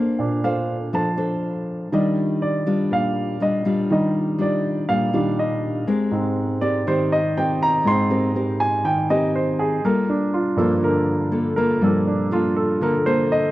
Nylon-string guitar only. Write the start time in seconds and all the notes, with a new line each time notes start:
Already playing: A#3 D4 A4 C5
0.44 D4 A4 C5
0.93 F3 D4 A4 C5
1.17 D4 A4 C5
1.92 D#3 G3 D4 F4
2.66 G3 D4 F4
2.91 A#2
3.40 G3 D4 F4
3.65 G3 D4 F4
3.90 D#3
4.38 G3 D4 F4
4.89 A#2 G3 D4 F4
5.13 G3 D4 F4
5.87 G#3 C4 G4 A#4
6.61 C4 G4 A#4
6.87 D#3 C4 G4 A#4
7.37 C4 G4 A#4
7.85 G#3
8.10 C4 G4 A#4
8.35 C4 G4 A#4
8.85 D#3
9.10 C4 G4 A#4
9.85 G3 A#3 F4 A4
10.58 A#3 F4 A4
10.83 D3
11.32 A#3 F4 A4
11.58 A#3 F4 A4
11.81 G3
12.31 A#3 F4 A4
12.81 D3 A#3 F4 A4
13.07 A#3 F4 A4